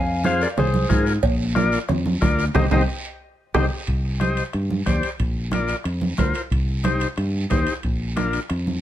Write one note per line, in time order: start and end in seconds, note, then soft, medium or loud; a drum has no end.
0.00 0.44 F2 loud
0.00 0.22 F5 medium
0.00 0.26 G#5 loud
0.24 0.47 F4 medium
0.24 0.48 G#4 medium
0.24 0.48 C5 medium
0.24 0.40 C5 medium
0.24 0.41 F5 loud
0.24 bombo rim medium
0.24 high conga medium
0.24 short guiro medium
0.41 0.46 A#4 medium
0.41 0.48 D5 medium
0.41 short guiro medium
0.57 0.84 C2 medium
0.57 1.04 G#4 medium
0.57 1.04 C5 medium
0.57 bombo rim medium
0.57 cowbell medium
0.57 low conga medium
0.57 long guiro medium
0.74 high conga medium
0.89 1.17 G#2 medium
0.89 1.13 F4 medium
0.89 1.13 G#4 medium
0.89 1.13 A#4 medium
0.89 bombo low medium
0.89 bombo rim medium
0.89 high conga medium
0.89 low conga medium
0.89 short guiro medium
1.06 short guiro medium
1.23 1.76 A#1 loud
1.23 bombo low medium
1.23 cowbell loud
1.23 long guiro medium
1.55 1.79 F4 medium
1.55 1.79 A#4 medium
1.55 1.79 D5 loud
1.55 bombo rim medium
1.55 high conga medium
1.55 short guiro medium
1.72 short guiro medium
1.88 2.16 F2 medium
1.88 bombo rim medium
1.88 cowbell medium
1.88 low conga medium
1.88 long guiro medium
2.06 high conga medium
2.21 2.48 D2 medium
2.21 2.45 F4 medium
2.21 2.45 A#4 medium
2.21 2.45 D5 medium
2.21 bombo low medium
2.21 bombo rim medium
2.21 high conga medium
2.21 short guiro medium
2.39 short guiro medium
2.54 2.67 C2 loud
2.54 2.66 D#4 loud
2.54 2.66 G4 loud
2.54 2.66 G4 medium
2.54 2.65 C5 medium
2.54 2.66 C5 medium
2.54 2.66 D#5 medium
2.54 bombo low loud
2.54 low conga loud
2.54 high timbale loud
2.54 long guiro medium
2.71 2.84 C2 loud
2.71 2.82 D#4 medium
2.71 2.82 G4 medium
2.71 2.83 G4 medium
2.71 2.82 C5 medium
2.71 2.83 C5 medium
2.71 2.83 D#5 medium
2.71 bombo low medium
2.71 low conga loud
2.71 high timbale loud
2.71 long guiro loud
3.54 3.67 C2 medium
3.54 3.65 D#4 medium
3.54 3.65 G4 loud
3.54 3.65 G4 medium
3.54 3.65 C5 medium
3.54 3.65 D#5 medium
3.54 bombo low medium
3.54 low conga medium
3.54 high timbale loud
3.54 long guiro loud
3.87 4.40 C2 medium
3.87 bombo low medium
3.87 high timbale medium
3.87 long guiro medium
4.20 4.44 G4 medium
4.20 4.44 C5 medium
4.20 4.44 D#5 medium
4.20 bombo rim medium
4.20 high conga medium
4.20 high timbale medium
4.20 short guiro medium
4.37 high timbale medium
4.37 short guiro medium
4.53 4.80 G2 medium
4.53 bombo rim medium
4.53 high timbale medium
4.53 long guiro medium
4.70 high conga medium
4.86 5.00 D#2 medium
4.86 5.09 G4 medium
4.86 5.10 C5 medium
4.86 5.10 D5 medium
4.86 bombo low medium
4.86 bombo rim medium
4.86 high conga medium
4.86 high timbale medium
4.86 short guiro medium
5.03 high timbale medium
5.03 short guiro medium
5.19 5.72 A#1 medium
5.19 bombo low medium
5.19 high timbale medium
5.19 long guiro medium
5.51 5.76 F4 medium
5.51 5.76 A#4 medium
5.51 5.77 D5 medium
5.51 bombo rim medium
5.51 high conga medium
5.51 high timbale medium
5.51 short guiro medium
5.68 high timbale medium
5.68 short guiro medium
5.84 6.12 F2 medium
5.84 bombo rim medium
5.84 high timbale medium
5.84 long guiro medium
6.01 high conga medium
6.17 6.32 D2 medium
6.17 6.42 F4 medium
6.17 6.42 A#4 medium
6.17 6.42 C5 medium
6.17 bombo low medium
6.17 bombo rim medium
6.17 high conga medium
6.17 high timbale medium
6.17 low timbale medium
6.17 short guiro medium
6.34 high timbale medium
6.34 short guiro medium
6.50 7.04 C2 medium
6.50 bombo low medium
6.50 high timbale medium
6.50 long guiro medium
6.84 7.07 D#4 medium
6.84 7.08 G4 medium
6.84 7.08 C5 medium
6.84 bombo rim medium
6.84 high conga medium
6.84 high timbale medium
6.84 short guiro medium
7.00 high timbale medium
7.00 short guiro medium
7.16 7.44 G2 medium
7.16 bombo rim medium
7.16 high timbale medium
7.16 long guiro medium
7.50 7.64 D#2 medium
7.50 7.74 D#4 medium
7.50 7.74 G4 medium
7.50 7.74 C5 medium
7.50 bombo low medium
7.50 bombo rim medium
7.50 high conga medium
7.50 high timbale medium
7.50 low timbale medium
7.50 short guiro medium
7.67 high timbale medium
7.67 short guiro medium
7.83 8.37 A#1 medium
7.83 bombo low medium
7.83 high timbale medium
7.83 long guiro medium
8.16 8.40 D4 medium
8.16 8.40 F4 medium
8.16 8.40 A#4 medium
8.16 bombo rim medium
8.16 high conga medium
8.16 high timbale medium
8.16 short guiro medium
8.33 high timbale medium
8.33 short guiro medium
8.49 8.77 F2 medium
8.49 bombo rim medium
8.49 high timbale medium
8.49 long guiro medium
8.67 high conga medium